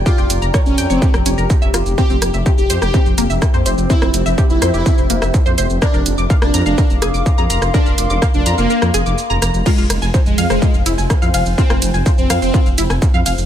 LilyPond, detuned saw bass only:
\new Staff \with { instrumentName = "Detuned saw bass" } { \clef bass \time 4/4 \key f \minor \tempo 4 = 125 r16 f,,16 f,,16 f,,16 r16 f,,16 f,16 f,,16 r16 f,,16 f,,16 f,,16 r16 f,,16 f,,16 f,,16 | r16 f,,16 f,,16 f,,16 r16 f,,16 f,16 f,,16 r16 f,,16 f,,16 f,,16 r16 f,16 f,,16 f,,16 | r16 f,,16 f,,16 f,,16 r16 f,,16 f,16 f,,16 r16 f,,16 f,,16 f,,16 r16 f,16 f,,16 f,,16 | r16 f,,16 f,,16 f,,16 r16 f,,16 f,16 f,,16 r16 f,,16 f,,16 f,,16 r16 f,16 f,,16 f,,16 |
r16 f,,16 f,,16 f,,16 r16 f,,16 f,16 f,,16 r16 f,16 f,,16 f,,16 r16 f,,16 f,,16 f,,16 | r16 f,,16 f,,16 f,,16 r16 f,,16 f,16 f,,16 r16 f,,16 f,,16 f,,16 r16 f,16 f,,16 f,,16 | r16 f,,16 f,,16 f,,16 r16 f,,16 f,16 f,,16 r16 f,,16 f,,16 f,,16 r16 f,16 f,,16 f,,16 | }